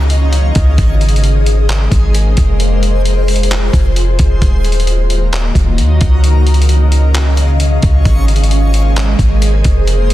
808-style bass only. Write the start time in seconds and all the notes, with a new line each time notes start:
Already playing: C#2
0.56 C#2
0.78 G#1
1.92 G#1
2.38 F1
3.73 F1
4.19 F1
4.42 D#1
5.55 D#1
5.78 D#2
6.01 C#2
7.83 C#2
8.05 G#1
9.19 G#1
9.65 F1